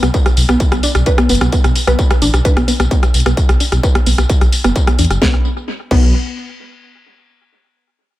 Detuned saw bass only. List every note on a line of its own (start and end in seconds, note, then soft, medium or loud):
0.03 0.10 B1 medium
0.37 0.45 B1 loud
0.49 0.56 B1 medium
0.72 0.79 B1 medium
0.95 1.02 B1 medium
1.30 1.37 F#1 loud
1.41 1.49 B1 medium
1.64 1.72 B1 medium
1.88 1.95 B1 medium
2.22 2.29 A1 loud
2.34 2.41 B1 medium
2.57 2.64 B1 medium
2.80 2.87 B1 medium
3.14 3.22 B1 loud
3.26 3.33 B1 medium
3.49 3.56 B1 medium
3.72 3.79 B1 medium
4.06 4.14 B1 medium
4.18 4.25 B1 medium
4.41 4.49 B1 medium
4.65 4.72 F#1 medium
4.99 5.06 E2 medium
5.11 5.18 F#1 medium
5.22 5.35 B1 loud
5.91 6.13 B1 loud